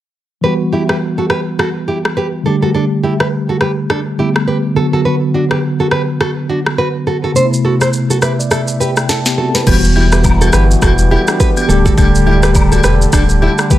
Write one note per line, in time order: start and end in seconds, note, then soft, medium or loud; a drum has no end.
0.41 2.40 E3 medium
0.41 2.41 G3 medium
0.41 2.42 B3 medium
0.41 0.54 G4 medium
0.41 0.53 B4 medium
0.46 2.43 F#4 medium
0.73 0.82 E4 medium
0.73 0.82 G4 medium
0.89 0.97 G4 medium
0.89 0.96 B4 medium
0.89 cross-stick medium
1.18 1.25 F#4 medium
1.18 1.25 A4 medium
1.30 1.40 G4 medium
1.30 1.39 B4 medium
1.30 cross-stick medium
1.59 1.69 F#4 medium
1.59 1.68 A4 medium
1.59 cross-stick medium
1.88 1.98 E4 medium
1.88 1.97 G4 medium
2.05 cross-stick medium
2.17 2.27 G4 medium
2.17 2.26 B4 medium
2.43 4.14 D3 medium
2.43 4.15 G3 medium
2.43 4.16 A3 medium
2.43 2.56 D4 medium
2.43 2.55 A4 medium
2.48 4.17 G4 medium
2.62 2.70 F#4 medium
2.62 2.69 A4 medium
2.75 2.84 D4 medium
2.75 2.84 A4 medium
3.04 3.13 E4 medium
3.04 3.13 G4 medium
3.20 3.28 G4 medium
3.20 3.27 B4 medium
3.20 cross-stick medium
3.49 3.56 F#4 medium
3.49 3.56 A4 medium
3.61 3.71 G4 medium
3.61 3.70 B4 medium
3.61 cross-stick medium
3.90 4.00 D4 medium
3.90 3.99 A4 medium
3.90 cross-stick medium
4.17 4.73 D3 medium
4.17 4.76 G3 soft
4.17 4.77 A3 medium
4.17 4.76 B3 medium
4.17 4.29 E4 medium
4.17 4.28 G4 medium
4.36 cross-stick medium
4.48 4.57 G4 medium
4.48 4.57 B4 medium
4.74 7.02 D3 medium
4.74 7.03 F#3 medium
4.74 7.04 B3 medium
4.74 4.86 F#4 medium
4.74 4.86 A4 medium
4.79 7.04 F#4 medium
4.93 5.01 F#4 medium
4.93 5.00 A4 medium
5.05 5.15 F#4 medium
5.05 5.15 B4 medium
5.34 5.44 D4 medium
5.34 5.44 F#4 medium
5.51 5.58 G4 medium
5.51 5.58 B4 medium
5.51 cross-stick medium
5.80 5.87 F#4 medium
5.80 5.87 A4 medium
5.91 6.02 G4 medium
5.91 6.01 B4 medium
5.91 cross-stick medium
6.21 6.31 F#4 medium
6.21 6.30 A4 medium
6.21 cross-stick medium
6.50 6.59 D4 medium
6.50 6.59 F#4 medium
6.66 cross-stick medium
6.78 6.88 F#4 medium
6.78 6.88 B4 medium
7.07 7.17 F#4 medium
7.07 7.16 A4 medium
7.24 7.31 F#4 medium
7.24 7.31 A4 medium
7.34 9.62 C3 medium
7.34 9.62 A3 medium
7.34 9.06 B3 medium
7.34 7.46 A4 medium
7.34 7.45 C5 medium
7.34 shaker medium
7.39 7.45 D4 medium
7.45 9.10 E4 medium
7.53 shaker medium
7.65 7.75 F#4 medium
7.65 7.74 A4 medium
7.81 7.89 A4 medium
7.81 7.88 C5 medium
7.81 cross-stick medium
7.81 shaker medium
7.93 shaker medium
8.10 8.18 F#4 medium
8.10 8.17 A4 medium
8.10 shaker medium
8.22 8.32 G4 medium
8.22 8.32 B4 medium
8.22 8.38 E5 medium
8.22 cross-stick medium
8.22 shaker medium
8.39 8.51 D5 medium
8.39 shaker soft
8.51 8.61 E4 medium
8.51 8.61 A4 medium
8.51 8.78 E5 medium
8.51 cross-stick medium
8.51 shaker medium
8.68 shaker soft
8.80 8.90 G4 medium
8.80 8.90 B4 medium
8.80 9.07 G5 medium
8.80 shaker medium
8.96 cross-stick medium
8.96 shaker medium
9.09 9.19 E4 medium
9.09 9.19 A4 medium
9.09 9.36 A5 medium
9.09 snare medium
9.09 shaker medium
9.26 9.38 B3 medium
9.26 9.38 G4 medium
9.26 snare medium
9.26 shaker soft
9.38 9.54 C4 medium
9.38 9.48 F#4 medium
9.38 9.47 A4 medium
9.38 9.54 A4 medium
9.38 9.65 A5 medium
9.55 9.83 E4 medium
9.55 9.62 G4 medium
9.55 9.61 B4 medium
9.55 9.82 C5 medium
9.55 snare medium
9.55 shaker medium
9.66 10.49 E1 loud
9.66 10.59 E3 medium
9.66 11.67 E3 medium
9.66 10.59 G3 medium
9.66 13.79 G3 medium
9.66 11.67 B3 medium
9.66 10.59 B3 medium
9.66 11.67 F#4 medium
9.66 10.60 F#4 medium
9.66 9.77 G4 medium
9.66 9.76 B4 medium
9.66 kick loud
9.66 crash medium
9.66 high agogo medium
9.66 shaker medium
9.84 shaker medium
9.96 10.06 E4 medium
9.96 10.05 G4 medium
9.96 high agogo medium
10.12 10.20 G4 medium
10.12 10.19 B4 medium
10.12 cross-stick medium
10.12 shaker medium
10.24 kick medium
10.24 low woodblock medium
10.24 shaker medium
10.41 10.49 F#4 medium
10.41 10.48 A4 medium
10.41 high agogo medium
10.41 shaker medium
10.53 10.75 G1 medium
10.53 10.63 G4 medium
10.53 10.63 B4 medium
10.53 cross-stick medium
10.53 shaker medium
10.71 shaker medium
10.82 11.17 E1 loud
10.82 10.92 F#4 medium
10.82 10.92 A4 medium
10.82 kick loud
10.82 cross-stick loud
10.82 high agogo medium
10.82 shaker medium
10.98 shaker medium
11.11 11.21 E4 medium
11.11 11.21 G4 medium
11.11 11.27 A4 medium
11.11 high agogo medium
11.27 11.56 D4 medium
11.27 11.55 B4 medium
11.27 cross-stick loud
11.27 shaker medium
11.40 11.50 G4 medium
11.40 11.49 B4 medium
11.40 kick loud
11.40 shaker medium
11.57 11.84 B3 medium
11.57 11.69 G4 medium
11.57 high agogo medium
11.57 shaker medium
11.68 11.91 D1 medium
11.68 12.61 D3 medium
11.68 13.79 D3 medium
11.68 12.62 G3 medium
11.68 12.62 A3 medium
11.68 13.79 D4 medium
11.68 11.79 D4 medium
11.68 12.63 G4 loud
11.68 11.78 A4 medium
11.68 13.79 A4 medium
11.68 shaker medium
11.86 11.93 F#4 medium
11.86 11.92 A4 medium
11.86 kick loud
11.86 shaker medium
11.98 12.80 D1 loud
11.98 12.08 D4 medium
11.98 12.07 A4 medium
11.98 kick loud
11.98 high agogo medium
11.98 shaker medium
12.15 shaker medium
12.26 12.36 E4 medium
12.26 12.36 G4 medium
12.26 high agogo medium
12.43 12.51 G4 medium
12.43 12.50 B4 medium
12.43 cross-stick medium
12.43 shaker medium
12.55 kick loud
12.55 low woodblock medium
12.55 shaker medium
12.72 12.79 F#4 medium
12.72 12.79 A4 medium
12.72 high agogo medium
12.72 shaker medium
12.83 13.06 E1 medium
12.83 12.94 G4 medium
12.83 12.94 B4 medium
12.83 cross-stick medium
12.83 shaker medium
13.02 shaker soft
13.13 13.48 D1 loud
13.13 13.23 D4 medium
13.13 13.22 A4 medium
13.13 kick loud
13.13 cross-stick loud
13.13 high agogo medium
13.13 shaker medium
13.29 shaker medium
13.42 13.52 E4 medium
13.42 13.51 G4 medium
13.42 high agogo medium
13.58 cross-stick medium
13.58 shaker medium
13.69 13.79 D3 medium
13.69 13.79 G3 medium
13.69 13.79 A3 medium
13.69 13.79 G4 medium
13.69 13.79 B4 medium
13.69 kick loud
13.69 shaker medium